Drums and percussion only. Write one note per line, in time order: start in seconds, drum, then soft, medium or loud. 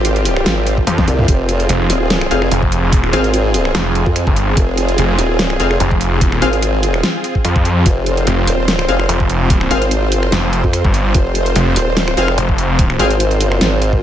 0.05 closed hi-hat medium
0.16 closed hi-hat soft
0.25 open hi-hat medium
0.37 finger snap medium
0.46 snare loud
0.46 closed hi-hat medium
0.67 closed hi-hat medium
0.78 kick medium
0.87 finger snap medium
0.87 closed hi-hat medium
0.87 high tom medium
0.98 kick loud
0.98 snare soft
0.98 high tom medium
1.08 closed hi-hat medium
1.19 mid tom medium
1.28 kick loud
1.28 closed hi-hat medium
1.49 closed hi-hat medium
1.60 closed hi-hat soft
1.69 closed hi-hat medium
1.90 open hi-hat medium
2.10 snare loud
2.10 closed hi-hat medium
2.21 finger snap medium
2.31 closed hi-hat medium
2.42 finger snap medium
2.51 closed hi-hat medium
2.63 kick medium
2.72 closed hi-hat medium
2.93 kick loud
2.93 closed hi-hat medium
3.04 finger snap soft
3.13 closed hi-hat medium
3.24 closed hi-hat soft
3.34 closed hi-hat medium
3.54 open hi-hat medium
3.65 finger snap medium
3.75 snare loud
3.75 closed hi-hat medium
3.95 closed hi-hat medium
4.06 kick medium
4.16 finger snap medium
4.16 closed hi-hat medium
4.27 kick loud
4.36 closed hi-hat medium
4.57 kick loud
4.57 closed hi-hat medium
4.77 closed hi-hat medium
4.89 closed hi-hat soft
4.98 closed hi-hat medium
5.19 open hi-hat medium
5.39 snare loud
5.39 closed hi-hat medium
5.50 finger snap medium
5.60 closed hi-hat medium
5.71 finger snap soft
5.80 closed hi-hat medium
5.91 kick medium
6.01 closed hi-hat medium
6.21 kick loud
6.21 closed hi-hat medium
6.32 finger snap medium
6.42 closed hi-hat medium
6.53 closed hi-hat soft
6.62 closed hi-hat medium
6.83 open hi-hat medium
6.94 finger snap medium
7.03 snare loud
7.03 closed hi-hat medium
7.24 closed hi-hat medium
7.35 kick medium
7.45 finger snap medium
7.45 closed hi-hat medium
7.56 kick loud
7.65 closed hi-hat medium
7.86 kick loud
7.86 closed hi-hat medium
8.06 closed hi-hat medium
8.17 closed hi-hat soft
8.27 closed hi-hat medium
8.47 open hi-hat medium
8.68 snare loud
8.68 closed hi-hat medium
8.79 finger snap medium
8.89 closed hi-hat soft
9.00 finger snap medium
9.09 closed hi-hat medium
9.20 kick medium
9.30 closed hi-hat medium
9.50 kick loud
9.50 closed hi-hat medium
9.61 finger snap medium
9.71 closed hi-hat medium
9.82 closed hi-hat soft
9.91 closed hi-hat medium
10.12 open hi-hat medium
10.23 finger snap medium
10.32 snare loud
10.32 closed hi-hat medium
10.53 closed hi-hat soft
10.64 kick medium
10.73 finger snap medium
10.73 closed hi-hat medium
10.85 kick loud
10.94 closed hi-hat medium
11.14 kick loud
11.14 closed hi-hat medium
11.35 closed hi-hat medium
11.46 closed hi-hat soft
11.56 closed hi-hat medium
11.76 open hi-hat medium
11.97 snare loud
11.97 closed hi-hat medium
12.08 finger snap medium
12.17 closed hi-hat medium
12.28 finger snap medium
12.38 closed hi-hat medium
12.49 kick medium
12.58 closed hi-hat medium
12.79 kick loud
12.79 closed hi-hat medium
12.90 finger snap medium
12.99 closed hi-hat medium
13.11 closed hi-hat soft
13.20 closed hi-hat medium
13.31 closed hi-hat soft
13.41 open hi-hat loud
13.52 finger snap medium
13.61 snare loud
13.61 closed hi-hat medium
13.82 closed hi-hat medium
13.93 kick medium